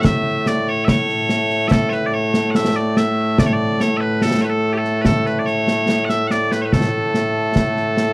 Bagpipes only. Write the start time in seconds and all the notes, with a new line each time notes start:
Already playing: A2 A3
0.01 E5 F#5
0.47 D5
0.69 C#5
0.85 E5
0.89 C#5
1.68 E5
1.72 A4
1.89 B4 C#5
2.06 D5
2.14 C#5
2.51 F#5
2.55 E5
2.76 D5
2.97 E5
3.39 D5
3.46 C#5
3.53 D5
3.81 C#5
3.97 B4 E5
4.22 A4
4.41 B4 C#5
4.49 A4
4.73 G4
4.78 A4
5.01 B4
5.05 A4
5.26 B4
5.39 D5
5.46 C#5
6.05 F#5
6.09 E5
6.27 D5 F#5
6.52 B4
6.62 B4 C#5
6.72 A4